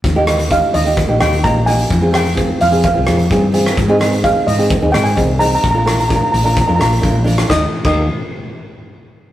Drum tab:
CC |----------------|----------------|----------------|----------------|
HH |x-xxx-xxx-xxx-xx|x-xxx-xxx-xxx-xx|x-xxx-xxx-xxx-xx|x-xxx-xxx-xxx-xx|
SD |--r-------r-----|--r-------r----r|--r-------r-----|--r-------r----r|
BD |o---o---o---o---|o---o---o---o---|o---o---o---o---|o---o---o---o---|

CC |---x------------|
HH |----------------|
SD |o---------------|
BD |o--o------------|